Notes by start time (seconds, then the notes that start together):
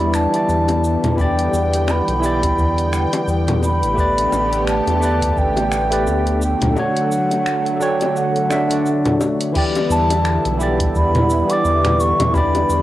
Already playing: E2 D3 E3 G3 B3 E4 G4 D5 B5
0.14 A5, finger snap, cabasa
0.30 E3 E4 G4, closed hi-hat, cabasa
0.36 D5
0.49 E2, cabasa
0.68 closed hi-hat, high bongo, cabasa
0.84 cabasa
1.04 E2, closed hi-hat, low conga, cabasa
1.15 E3 E4 G4 G5, kick, high bongo, cabasa
1.20 D5 G5
1.39 closed hi-hat, cabasa
1.53 E2, cabasa
1.73 closed hi-hat, cabasa
1.88 B5, finger snap, high bongo, cabasa
2.08 B1, closed hi-hat, cabasa
2.20 E3 E4 G4, cabasa
2.26 D5
2.43 kick, closed hi-hat, high bongo, cabasa
2.58 E2, kick, cabasa
2.78 closed hi-hat, cabasa
2.93 finger snap, cabasa
3.13 closed hi-hat, high bongo, cabasa
3.27 E2, cabasa
3.48 closed hi-hat, low conga, cabasa
3.63 B5, high bongo, cabasa
3.82 A1, closed hi-hat, cabasa
3.94 D3 A3 B3 G4 B4, kick
3.98 D5, cabasa
4.18 closed hi-hat, cabasa
4.32 A1, high bongo, cabasa
4.53 closed hi-hat, cabasa
4.67 A5, finger snap, cabasa
4.87 E2, closed hi-hat, high bongo, cabasa
4.99 A3 G4 B4, cabasa
5.05 D5
5.22 kick, closed hi-hat, cabasa
5.37 A1 G5, kick, cabasa
5.57 closed hi-hat, high bongo, cabasa
5.72 finger snap, cabasa
5.90 A3 G4 B4 D5, closed hi-hat, cabasa
6.07 D2, high bongo, cabasa
6.27 closed hi-hat, cabasa
6.42 F#3 A3 G5, cabasa
6.62 D2, closed hi-hat, low conga, cabasa
6.73 D3 D4 F#4, high bongo, cabasa
6.78 C#5 F#5
6.96 closed hi-hat, cabasa
7.12 cabasa
7.31 closed hi-hat, high bongo, cabasa
7.46 finger snap, cabasa
7.66 closed hi-hat, cabasa
7.80 D3 F#3 D4 C#5 G5, cabasa
8.01 closed hi-hat, high bongo, cabasa
8.16 F#5, cabasa
8.36 closed hi-hat, cabasa
8.49 D3 D4 F#4 E5, finger snap, high bongo, cabasa
8.68 D3 D4, closed hi-hat, cabasa
8.72 F#4 D5
8.86 cabasa
9.05 closed hi-hat, low conga, cabasa
9.21 high bongo, cabasa
9.41 closed hi-hat, cabasa
9.52 D3 E3 G3 B3 E4 G4, kick, crash, cabasa
9.57 D5 G5
9.75 closed hi-hat, high bongo, cabasa
9.90 E2 A5, cabasa
10.10 closed hi-hat, high bongo, cabasa
10.25 finger snap, cabasa
10.45 B1, closed hi-hat, cabasa
10.57 E3 E4, cabasa
10.61 G4 D5
10.80 kick, closed hi-hat, cabasa
10.95 E2 B5, kick, cabasa
11.15 closed hi-hat, low conga, cabasa
11.30 cabasa
11.47 E3 E4 G4 D6, closed hi-hat, cabasa
11.53 D5
11.65 E2, cabasa
11.85 finger snap, closed hi-hat, low conga, cabasa
12.00 C#6, cabasa
12.20 E2, closed hi-hat, high bongo, low conga, cabasa
12.32 E3 D4 E4 G4 B5, kick, high bongo, cabasa
12.37 D5
12.55 closed hi-hat, high bongo, cabasa
12.69 E2, cabasa